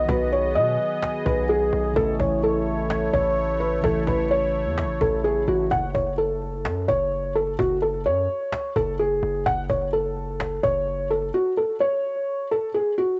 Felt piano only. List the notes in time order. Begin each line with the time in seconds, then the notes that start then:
0.09 B4
0.32 C#5
0.55 D#5
1.26 B4
1.49 G#4
1.96 A4
2.20 C#5
2.43 A4
3.14 C#5
3.60 B4
3.84 A4
4.07 B4
4.31 C#5
5.01 A4
5.24 G#4
5.48 F#4
5.71 F#5
5.94 C#5
6.18 A4
6.88 C#5
7.35 A4
7.59 F#4
7.82 A4
8.06 C#5
8.76 A4
8.99 G#4
9.46 F#5
9.70 C#5
9.93 A4
10.63 C#5
11.11 A4
11.34 F#4
11.57 A4
11.80 C#5
12.51 A4
12.74 G#4
12.98 F#4